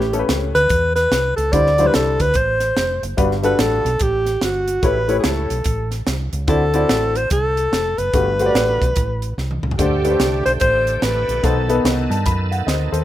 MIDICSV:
0, 0, Header, 1, 6, 480
1, 0, Start_track
1, 0, Key_signature, 1, "major"
1, 0, Tempo, 412655
1, 1775, Time_signature, 4, 2, 24, 8
1, 15169, End_track
2, 0, Start_track
2, 0, Title_t, "Alto saxophone"
2, 0, Program_c, 0, 65
2, 0, Note_on_c, 0, 67, 76
2, 302, Note_off_c, 0, 67, 0
2, 637, Note_on_c, 0, 71, 92
2, 1084, Note_off_c, 0, 71, 0
2, 1111, Note_on_c, 0, 71, 91
2, 1560, Note_off_c, 0, 71, 0
2, 1585, Note_on_c, 0, 69, 87
2, 1773, Note_on_c, 0, 74, 100
2, 1790, Note_off_c, 0, 69, 0
2, 2174, Note_on_c, 0, 71, 85
2, 2191, Note_off_c, 0, 74, 0
2, 2261, Note_on_c, 0, 69, 84
2, 2278, Note_off_c, 0, 71, 0
2, 2572, Note_on_c, 0, 71, 94
2, 2590, Note_off_c, 0, 69, 0
2, 2750, Note_on_c, 0, 72, 86
2, 2768, Note_off_c, 0, 71, 0
2, 3524, Note_off_c, 0, 72, 0
2, 4010, Note_on_c, 0, 71, 85
2, 4192, Note_on_c, 0, 69, 92
2, 4209, Note_off_c, 0, 71, 0
2, 4681, Note_on_c, 0, 67, 92
2, 4698, Note_off_c, 0, 69, 0
2, 5149, Note_off_c, 0, 67, 0
2, 5166, Note_on_c, 0, 66, 84
2, 5650, Note_on_c, 0, 71, 94
2, 5668, Note_off_c, 0, 66, 0
2, 6031, Note_off_c, 0, 71, 0
2, 6038, Note_on_c, 0, 68, 59
2, 6119, Note_on_c, 0, 69, 76
2, 6137, Note_off_c, 0, 68, 0
2, 6892, Note_off_c, 0, 69, 0
2, 7546, Note_on_c, 0, 69, 95
2, 8334, Note_on_c, 0, 72, 96
2, 8351, Note_off_c, 0, 69, 0
2, 8508, Note_off_c, 0, 72, 0
2, 8514, Note_on_c, 0, 69, 94
2, 9287, Note_on_c, 0, 71, 92
2, 9304, Note_off_c, 0, 69, 0
2, 10907, Note_off_c, 0, 71, 0
2, 11379, Note_on_c, 0, 67, 79
2, 12118, Note_off_c, 0, 67, 0
2, 12161, Note_on_c, 0, 72, 92
2, 12243, Note_off_c, 0, 72, 0
2, 12339, Note_on_c, 0, 72, 102
2, 12763, Note_off_c, 0, 72, 0
2, 12763, Note_on_c, 0, 72, 66
2, 12834, Note_on_c, 0, 71, 95
2, 12851, Note_off_c, 0, 72, 0
2, 13314, Note_on_c, 0, 69, 78
2, 13331, Note_off_c, 0, 71, 0
2, 13789, Note_off_c, 0, 69, 0
2, 15169, End_track
3, 0, Start_track
3, 0, Title_t, "Grand piano"
3, 0, Program_c, 1, 0
3, 0, Note_on_c, 1, 45, 56
3, 151, Note_on_c, 1, 57, 70
3, 157, Note_on_c, 1, 61, 59
3, 163, Note_on_c, 1, 67, 59
3, 163, Note_on_c, 1, 69, 62
3, 203, Note_off_c, 1, 69, 0
3, 223, Note_on_c, 1, 71, 79
3, 590, Note_off_c, 1, 45, 0
3, 642, Note_off_c, 1, 57, 0
3, 645, Note_off_c, 1, 61, 0
3, 648, Note_off_c, 1, 67, 0
3, 678, Note_off_c, 1, 71, 0
3, 1779, Note_on_c, 1, 55, 59
3, 1781, Note_on_c, 1, 62, 53
3, 1787, Note_on_c, 1, 50, 54
3, 1788, Note_on_c, 1, 64, 54
3, 1794, Note_on_c, 1, 72, 68
3, 1931, Note_off_c, 1, 55, 0
3, 1932, Note_off_c, 1, 62, 0
3, 1936, Note_off_c, 1, 64, 0
3, 1939, Note_off_c, 1, 72, 0
3, 2076, Note_on_c, 1, 54, 53
3, 2081, Note_on_c, 1, 62, 58
3, 2087, Note_on_c, 1, 64, 56
3, 2094, Note_on_c, 1, 72, 75
3, 2119, Note_off_c, 1, 54, 0
3, 2135, Note_on_c, 1, 55, 68
3, 2516, Note_off_c, 1, 50, 0
3, 2567, Note_off_c, 1, 62, 0
3, 2570, Note_off_c, 1, 64, 0
3, 2573, Note_off_c, 1, 72, 0
3, 2594, Note_off_c, 1, 55, 0
3, 3689, Note_on_c, 1, 55, 72
3, 3691, Note_on_c, 1, 62, 66
3, 3696, Note_on_c, 1, 43, 60
3, 3699, Note_on_c, 1, 66, 63
3, 3703, Note_on_c, 1, 71, 86
3, 3846, Note_off_c, 1, 55, 0
3, 3847, Note_off_c, 1, 62, 0
3, 3851, Note_off_c, 1, 66, 0
3, 3853, Note_off_c, 1, 71, 0
3, 3985, Note_on_c, 1, 55, 67
3, 3995, Note_on_c, 1, 62, 63
3, 4002, Note_on_c, 1, 66, 60
3, 4005, Note_on_c, 1, 69, 73
3, 4431, Note_off_c, 1, 43, 0
3, 4479, Note_off_c, 1, 55, 0
3, 4484, Note_off_c, 1, 62, 0
3, 4488, Note_off_c, 1, 66, 0
3, 4489, Note_off_c, 1, 69, 0
3, 5613, Note_on_c, 1, 57, 59
3, 5618, Note_on_c, 1, 64, 59
3, 5623, Note_on_c, 1, 45, 54
3, 5628, Note_on_c, 1, 67, 57
3, 5635, Note_on_c, 1, 73, 62
3, 5769, Note_off_c, 1, 57, 0
3, 5772, Note_off_c, 1, 64, 0
3, 5777, Note_off_c, 1, 67, 0
3, 5781, Note_off_c, 1, 73, 0
3, 5908, Note_on_c, 1, 57, 64
3, 5916, Note_on_c, 1, 64, 62
3, 5923, Note_on_c, 1, 67, 59
3, 5924, Note_on_c, 1, 73, 73
3, 6357, Note_off_c, 1, 45, 0
3, 6402, Note_off_c, 1, 57, 0
3, 6407, Note_off_c, 1, 64, 0
3, 6410, Note_off_c, 1, 67, 0
3, 6411, Note_off_c, 1, 73, 0
3, 7531, Note_on_c, 1, 60, 65
3, 7533, Note_on_c, 1, 64, 62
3, 7537, Note_on_c, 1, 50, 53
3, 7541, Note_on_c, 1, 66, 60
3, 7543, Note_on_c, 1, 74, 72
3, 7690, Note_off_c, 1, 60, 0
3, 7691, Note_off_c, 1, 64, 0
3, 7695, Note_off_c, 1, 66, 0
3, 7697, Note_off_c, 1, 74, 0
3, 7836, Note_on_c, 1, 60, 71
3, 7842, Note_on_c, 1, 66, 63
3, 7846, Note_on_c, 1, 64, 60
3, 7853, Note_on_c, 1, 74, 75
3, 8276, Note_off_c, 1, 50, 0
3, 8329, Note_off_c, 1, 60, 0
3, 8332, Note_off_c, 1, 66, 0
3, 8334, Note_off_c, 1, 64, 0
3, 8337, Note_off_c, 1, 74, 0
3, 9466, Note_on_c, 1, 57, 62
3, 9469, Note_on_c, 1, 66, 57
3, 9473, Note_on_c, 1, 43, 53
3, 9479, Note_on_c, 1, 67, 57
3, 9488, Note_on_c, 1, 71, 69
3, 9620, Note_off_c, 1, 57, 0
3, 9622, Note_off_c, 1, 66, 0
3, 9626, Note_off_c, 1, 67, 0
3, 9631, Note_off_c, 1, 71, 0
3, 9768, Note_on_c, 1, 57, 66
3, 9773, Note_on_c, 1, 66, 63
3, 9776, Note_on_c, 1, 67, 60
3, 9783, Note_on_c, 1, 72, 60
3, 9818, Note_off_c, 1, 72, 0
3, 9842, Note_on_c, 1, 74, 75
3, 10205, Note_off_c, 1, 43, 0
3, 10256, Note_off_c, 1, 57, 0
3, 10259, Note_off_c, 1, 66, 0
3, 10260, Note_off_c, 1, 67, 0
3, 10293, Note_off_c, 1, 74, 0
3, 11388, Note_on_c, 1, 57, 63
3, 11391, Note_on_c, 1, 50, 56
3, 11391, Note_on_c, 1, 62, 55
3, 11402, Note_on_c, 1, 67, 54
3, 11407, Note_on_c, 1, 72, 68
3, 11541, Note_off_c, 1, 57, 0
3, 11543, Note_off_c, 1, 62, 0
3, 11548, Note_off_c, 1, 67, 0
3, 11551, Note_off_c, 1, 72, 0
3, 11689, Note_on_c, 1, 57, 63
3, 11690, Note_on_c, 1, 62, 62
3, 11698, Note_on_c, 1, 67, 57
3, 11701, Note_on_c, 1, 71, 57
3, 11737, Note_off_c, 1, 71, 0
3, 11763, Note_on_c, 1, 72, 67
3, 12124, Note_off_c, 1, 50, 0
3, 12177, Note_off_c, 1, 57, 0
3, 12177, Note_off_c, 1, 62, 0
3, 12181, Note_off_c, 1, 67, 0
3, 12213, Note_off_c, 1, 72, 0
3, 13292, Note_on_c, 1, 59, 64
3, 13298, Note_on_c, 1, 63, 59
3, 13302, Note_on_c, 1, 47, 55
3, 13310, Note_on_c, 1, 69, 57
3, 13310, Note_on_c, 1, 72, 70
3, 13453, Note_off_c, 1, 59, 0
3, 13456, Note_off_c, 1, 63, 0
3, 13461, Note_off_c, 1, 69, 0
3, 13461, Note_off_c, 1, 72, 0
3, 13593, Note_on_c, 1, 59, 68
3, 13604, Note_on_c, 1, 63, 57
3, 13606, Note_on_c, 1, 69, 57
3, 13609, Note_on_c, 1, 71, 75
3, 14037, Note_off_c, 1, 47, 0
3, 14084, Note_on_c, 1, 81, 67
3, 14086, Note_off_c, 1, 59, 0
3, 14092, Note_off_c, 1, 63, 0
3, 14093, Note_off_c, 1, 69, 0
3, 14094, Note_off_c, 1, 71, 0
3, 14250, Note_off_c, 1, 81, 0
3, 14259, Note_on_c, 1, 83, 67
3, 14540, Note_off_c, 1, 83, 0
3, 14557, Note_on_c, 1, 78, 64
3, 14726, Note_off_c, 1, 78, 0
3, 14732, Note_on_c, 1, 75, 62
3, 14740, Note_on_c, 1, 72, 52
3, 15011, Note_off_c, 1, 72, 0
3, 15029, Note_on_c, 1, 72, 64
3, 15034, Note_on_c, 1, 69, 54
3, 15169, Note_off_c, 1, 69, 0
3, 15169, Note_off_c, 1, 72, 0
3, 15169, Note_off_c, 1, 75, 0
3, 15169, End_track
4, 0, Start_track
4, 0, Title_t, "Tonewheel organ"
4, 0, Program_c, 2, 16
4, 11375, Note_on_c, 2, 50, 55
4, 11378, Note_on_c, 2, 67, 61
4, 11381, Note_on_c, 2, 57, 53
4, 13280, Note_off_c, 2, 50, 0
4, 13282, Note_off_c, 2, 67, 0
4, 13283, Note_off_c, 2, 57, 0
4, 13295, Note_on_c, 2, 69, 67
4, 13298, Note_on_c, 2, 51, 58
4, 13302, Note_on_c, 2, 59, 50
4, 15169, Note_off_c, 2, 51, 0
4, 15169, Note_off_c, 2, 59, 0
4, 15169, Note_off_c, 2, 69, 0
4, 15169, End_track
5, 0, Start_track
5, 0, Title_t, "Fingered electric bass"
5, 0, Program_c, 3, 33
5, 0, Note_on_c, 3, 33, 99
5, 260, Note_off_c, 3, 33, 0
5, 339, Note_on_c, 3, 37, 73
5, 594, Note_off_c, 3, 37, 0
5, 636, Note_on_c, 3, 38, 83
5, 789, Note_off_c, 3, 38, 0
5, 819, Note_on_c, 3, 40, 75
5, 1225, Note_off_c, 3, 40, 0
5, 1294, Note_on_c, 3, 36, 70
5, 1551, Note_off_c, 3, 36, 0
5, 1599, Note_on_c, 3, 37, 80
5, 1750, Note_off_c, 3, 37, 0
5, 1779, Note_on_c, 3, 38, 95
5, 2185, Note_off_c, 3, 38, 0
5, 2268, Note_on_c, 3, 36, 72
5, 2519, Note_off_c, 3, 36, 0
5, 2561, Note_on_c, 3, 38, 82
5, 2711, Note_off_c, 3, 38, 0
5, 2736, Note_on_c, 3, 33, 72
5, 3144, Note_off_c, 3, 33, 0
5, 3218, Note_on_c, 3, 29, 71
5, 3473, Note_off_c, 3, 29, 0
5, 3520, Note_on_c, 3, 30, 82
5, 3671, Note_off_c, 3, 30, 0
5, 3701, Note_on_c, 3, 31, 95
5, 4107, Note_off_c, 3, 31, 0
5, 4176, Note_on_c, 3, 33, 87
5, 4432, Note_off_c, 3, 33, 0
5, 4476, Note_on_c, 3, 35, 90
5, 4629, Note_off_c, 3, 35, 0
5, 4657, Note_on_c, 3, 33, 82
5, 5065, Note_off_c, 3, 33, 0
5, 5144, Note_on_c, 3, 31, 73
5, 5549, Note_off_c, 3, 31, 0
5, 5617, Note_on_c, 3, 33, 93
5, 6026, Note_off_c, 3, 33, 0
5, 6102, Note_on_c, 3, 37, 84
5, 6357, Note_off_c, 3, 37, 0
5, 6400, Note_on_c, 3, 35, 82
5, 6552, Note_off_c, 3, 35, 0
5, 6577, Note_on_c, 3, 33, 77
5, 6987, Note_off_c, 3, 33, 0
5, 7061, Note_on_c, 3, 36, 80
5, 7317, Note_off_c, 3, 36, 0
5, 7360, Note_on_c, 3, 37, 75
5, 7513, Note_off_c, 3, 37, 0
5, 7539, Note_on_c, 3, 38, 86
5, 7949, Note_off_c, 3, 38, 0
5, 8021, Note_on_c, 3, 33, 78
5, 8431, Note_off_c, 3, 33, 0
5, 8503, Note_on_c, 3, 36, 84
5, 8912, Note_off_c, 3, 36, 0
5, 8976, Note_on_c, 3, 29, 76
5, 9236, Note_off_c, 3, 29, 0
5, 9283, Note_on_c, 3, 30, 84
5, 9436, Note_off_c, 3, 30, 0
5, 9461, Note_on_c, 3, 31, 96
5, 9872, Note_off_c, 3, 31, 0
5, 9939, Note_on_c, 3, 33, 78
5, 10199, Note_off_c, 3, 33, 0
5, 10258, Note_on_c, 3, 35, 77
5, 10406, Note_off_c, 3, 35, 0
5, 10429, Note_on_c, 3, 33, 84
5, 10836, Note_off_c, 3, 33, 0
5, 10907, Note_on_c, 3, 36, 77
5, 11163, Note_off_c, 3, 36, 0
5, 11199, Note_on_c, 3, 37, 75
5, 11355, Note_off_c, 3, 37, 0
5, 11388, Note_on_c, 3, 38, 91
5, 11796, Note_off_c, 3, 38, 0
5, 11855, Note_on_c, 3, 36, 75
5, 12116, Note_off_c, 3, 36, 0
5, 12164, Note_on_c, 3, 35, 81
5, 12318, Note_off_c, 3, 35, 0
5, 12342, Note_on_c, 3, 33, 83
5, 12751, Note_off_c, 3, 33, 0
5, 12823, Note_on_c, 3, 33, 83
5, 13080, Note_off_c, 3, 33, 0
5, 13128, Note_on_c, 3, 34, 74
5, 13279, Note_off_c, 3, 34, 0
5, 13304, Note_on_c, 3, 35, 91
5, 13712, Note_off_c, 3, 35, 0
5, 13778, Note_on_c, 3, 36, 84
5, 14036, Note_off_c, 3, 36, 0
5, 14075, Note_on_c, 3, 43, 84
5, 14231, Note_off_c, 3, 43, 0
5, 14263, Note_on_c, 3, 42, 79
5, 14670, Note_off_c, 3, 42, 0
5, 14734, Note_on_c, 3, 38, 81
5, 14992, Note_off_c, 3, 38, 0
5, 15033, Note_on_c, 3, 39, 88
5, 15169, Note_off_c, 3, 39, 0
5, 15169, End_track
6, 0, Start_track
6, 0, Title_t, "Drums"
6, 9, Note_on_c, 9, 38, 30
6, 125, Note_off_c, 9, 38, 0
6, 156, Note_on_c, 9, 42, 65
6, 272, Note_off_c, 9, 42, 0
6, 336, Note_on_c, 9, 38, 117
6, 336, Note_on_c, 9, 42, 74
6, 452, Note_off_c, 9, 38, 0
6, 452, Note_off_c, 9, 42, 0
6, 645, Note_on_c, 9, 42, 74
6, 761, Note_off_c, 9, 42, 0
6, 808, Note_on_c, 9, 42, 95
6, 818, Note_on_c, 9, 36, 104
6, 925, Note_off_c, 9, 42, 0
6, 935, Note_off_c, 9, 36, 0
6, 1114, Note_on_c, 9, 38, 29
6, 1121, Note_on_c, 9, 42, 69
6, 1230, Note_off_c, 9, 38, 0
6, 1237, Note_off_c, 9, 42, 0
6, 1299, Note_on_c, 9, 38, 94
6, 1305, Note_on_c, 9, 42, 80
6, 1415, Note_off_c, 9, 38, 0
6, 1421, Note_off_c, 9, 42, 0
6, 1604, Note_on_c, 9, 42, 69
6, 1720, Note_off_c, 9, 42, 0
6, 1776, Note_on_c, 9, 42, 85
6, 1779, Note_on_c, 9, 36, 110
6, 1893, Note_off_c, 9, 42, 0
6, 1896, Note_off_c, 9, 36, 0
6, 1936, Note_on_c, 9, 38, 30
6, 2052, Note_off_c, 9, 38, 0
6, 2074, Note_on_c, 9, 42, 61
6, 2190, Note_off_c, 9, 42, 0
6, 2254, Note_on_c, 9, 38, 116
6, 2254, Note_on_c, 9, 42, 76
6, 2370, Note_off_c, 9, 38, 0
6, 2371, Note_off_c, 9, 42, 0
6, 2555, Note_on_c, 9, 42, 76
6, 2561, Note_on_c, 9, 36, 82
6, 2672, Note_off_c, 9, 42, 0
6, 2677, Note_off_c, 9, 36, 0
6, 2719, Note_on_c, 9, 42, 86
6, 2738, Note_on_c, 9, 36, 101
6, 2835, Note_off_c, 9, 42, 0
6, 2854, Note_off_c, 9, 36, 0
6, 3023, Note_on_c, 9, 38, 28
6, 3030, Note_on_c, 9, 42, 69
6, 3139, Note_off_c, 9, 38, 0
6, 3146, Note_off_c, 9, 42, 0
6, 3217, Note_on_c, 9, 38, 94
6, 3223, Note_on_c, 9, 42, 75
6, 3333, Note_off_c, 9, 38, 0
6, 3339, Note_off_c, 9, 42, 0
6, 3527, Note_on_c, 9, 42, 66
6, 3643, Note_off_c, 9, 42, 0
6, 3697, Note_on_c, 9, 42, 81
6, 3699, Note_on_c, 9, 36, 101
6, 3813, Note_off_c, 9, 42, 0
6, 3816, Note_off_c, 9, 36, 0
6, 3854, Note_on_c, 9, 38, 28
6, 3970, Note_off_c, 9, 38, 0
6, 3996, Note_on_c, 9, 42, 60
6, 4112, Note_off_c, 9, 42, 0
6, 4174, Note_on_c, 9, 38, 116
6, 4174, Note_on_c, 9, 42, 79
6, 4290, Note_off_c, 9, 38, 0
6, 4290, Note_off_c, 9, 42, 0
6, 4487, Note_on_c, 9, 42, 73
6, 4604, Note_off_c, 9, 42, 0
6, 4646, Note_on_c, 9, 42, 90
6, 4661, Note_on_c, 9, 36, 102
6, 4762, Note_off_c, 9, 42, 0
6, 4778, Note_off_c, 9, 36, 0
6, 4954, Note_on_c, 9, 38, 31
6, 4961, Note_on_c, 9, 42, 64
6, 5071, Note_off_c, 9, 38, 0
6, 5077, Note_off_c, 9, 42, 0
6, 5135, Note_on_c, 9, 38, 87
6, 5141, Note_on_c, 9, 42, 81
6, 5251, Note_off_c, 9, 38, 0
6, 5257, Note_off_c, 9, 42, 0
6, 5439, Note_on_c, 9, 42, 70
6, 5556, Note_off_c, 9, 42, 0
6, 5615, Note_on_c, 9, 42, 74
6, 5616, Note_on_c, 9, 36, 106
6, 5731, Note_off_c, 9, 42, 0
6, 5733, Note_off_c, 9, 36, 0
6, 5918, Note_on_c, 9, 42, 64
6, 6034, Note_off_c, 9, 42, 0
6, 6092, Note_on_c, 9, 38, 113
6, 6092, Note_on_c, 9, 42, 76
6, 6208, Note_off_c, 9, 38, 0
6, 6208, Note_off_c, 9, 42, 0
6, 6400, Note_on_c, 9, 42, 73
6, 6516, Note_off_c, 9, 42, 0
6, 6565, Note_on_c, 9, 42, 96
6, 6580, Note_on_c, 9, 36, 97
6, 6681, Note_off_c, 9, 42, 0
6, 6696, Note_off_c, 9, 36, 0
6, 6874, Note_on_c, 9, 38, 32
6, 6881, Note_on_c, 9, 42, 70
6, 6990, Note_off_c, 9, 38, 0
6, 6997, Note_off_c, 9, 42, 0
6, 7056, Note_on_c, 9, 38, 90
6, 7062, Note_on_c, 9, 42, 79
6, 7172, Note_off_c, 9, 38, 0
6, 7178, Note_off_c, 9, 42, 0
6, 7360, Note_on_c, 9, 42, 67
6, 7476, Note_off_c, 9, 42, 0
6, 7533, Note_on_c, 9, 42, 78
6, 7537, Note_on_c, 9, 36, 107
6, 7650, Note_off_c, 9, 42, 0
6, 7653, Note_off_c, 9, 36, 0
6, 7836, Note_on_c, 9, 42, 65
6, 7952, Note_off_c, 9, 42, 0
6, 8019, Note_on_c, 9, 38, 107
6, 8019, Note_on_c, 9, 42, 81
6, 8135, Note_off_c, 9, 38, 0
6, 8135, Note_off_c, 9, 42, 0
6, 8322, Note_on_c, 9, 42, 76
6, 8438, Note_off_c, 9, 42, 0
6, 8494, Note_on_c, 9, 42, 91
6, 8504, Note_on_c, 9, 36, 108
6, 8610, Note_off_c, 9, 42, 0
6, 8620, Note_off_c, 9, 36, 0
6, 8809, Note_on_c, 9, 42, 70
6, 8925, Note_off_c, 9, 42, 0
6, 8989, Note_on_c, 9, 38, 90
6, 8996, Note_on_c, 9, 42, 75
6, 9106, Note_off_c, 9, 38, 0
6, 9112, Note_off_c, 9, 42, 0
6, 9286, Note_on_c, 9, 42, 69
6, 9403, Note_off_c, 9, 42, 0
6, 9462, Note_on_c, 9, 42, 79
6, 9464, Note_on_c, 9, 36, 100
6, 9578, Note_off_c, 9, 42, 0
6, 9580, Note_off_c, 9, 36, 0
6, 9764, Note_on_c, 9, 42, 62
6, 9880, Note_off_c, 9, 42, 0
6, 9948, Note_on_c, 9, 38, 119
6, 9948, Note_on_c, 9, 42, 78
6, 10064, Note_off_c, 9, 38, 0
6, 10065, Note_off_c, 9, 42, 0
6, 10255, Note_on_c, 9, 36, 85
6, 10264, Note_on_c, 9, 42, 77
6, 10371, Note_off_c, 9, 36, 0
6, 10380, Note_off_c, 9, 42, 0
6, 10418, Note_on_c, 9, 42, 95
6, 10430, Note_on_c, 9, 36, 104
6, 10534, Note_off_c, 9, 42, 0
6, 10547, Note_off_c, 9, 36, 0
6, 10726, Note_on_c, 9, 42, 70
6, 10843, Note_off_c, 9, 42, 0
6, 10912, Note_on_c, 9, 38, 48
6, 11028, Note_off_c, 9, 38, 0
6, 11060, Note_on_c, 9, 48, 53
6, 11176, Note_off_c, 9, 48, 0
6, 11203, Note_on_c, 9, 45, 77
6, 11299, Note_on_c, 9, 43, 80
6, 11319, Note_off_c, 9, 45, 0
6, 11387, Note_on_c, 9, 36, 105
6, 11388, Note_on_c, 9, 42, 82
6, 11415, Note_off_c, 9, 43, 0
6, 11503, Note_off_c, 9, 36, 0
6, 11505, Note_off_c, 9, 42, 0
6, 11686, Note_on_c, 9, 42, 64
6, 11803, Note_off_c, 9, 42, 0
6, 11862, Note_on_c, 9, 38, 101
6, 11862, Note_on_c, 9, 42, 81
6, 11978, Note_off_c, 9, 38, 0
6, 11978, Note_off_c, 9, 42, 0
6, 12168, Note_on_c, 9, 42, 75
6, 12285, Note_off_c, 9, 42, 0
6, 12329, Note_on_c, 9, 42, 84
6, 12346, Note_on_c, 9, 36, 100
6, 12445, Note_off_c, 9, 42, 0
6, 12462, Note_off_c, 9, 36, 0
6, 12644, Note_on_c, 9, 42, 68
6, 12761, Note_off_c, 9, 42, 0
6, 12821, Note_on_c, 9, 38, 94
6, 12827, Note_on_c, 9, 42, 74
6, 12937, Note_off_c, 9, 38, 0
6, 12943, Note_off_c, 9, 42, 0
6, 13132, Note_on_c, 9, 42, 64
6, 13248, Note_off_c, 9, 42, 0
6, 13303, Note_on_c, 9, 42, 81
6, 13304, Note_on_c, 9, 36, 105
6, 13419, Note_off_c, 9, 42, 0
6, 13420, Note_off_c, 9, 36, 0
6, 13603, Note_on_c, 9, 42, 61
6, 13719, Note_off_c, 9, 42, 0
6, 13787, Note_on_c, 9, 38, 119
6, 13787, Note_on_c, 9, 42, 83
6, 13903, Note_off_c, 9, 38, 0
6, 13904, Note_off_c, 9, 42, 0
6, 14092, Note_on_c, 9, 42, 72
6, 14209, Note_off_c, 9, 42, 0
6, 14256, Note_on_c, 9, 42, 91
6, 14266, Note_on_c, 9, 36, 105
6, 14373, Note_off_c, 9, 42, 0
6, 14382, Note_off_c, 9, 36, 0
6, 14568, Note_on_c, 9, 42, 65
6, 14684, Note_off_c, 9, 42, 0
6, 14750, Note_on_c, 9, 38, 92
6, 14756, Note_on_c, 9, 42, 80
6, 14867, Note_off_c, 9, 38, 0
6, 14873, Note_off_c, 9, 42, 0
6, 15048, Note_on_c, 9, 42, 66
6, 15165, Note_off_c, 9, 42, 0
6, 15169, End_track
0, 0, End_of_file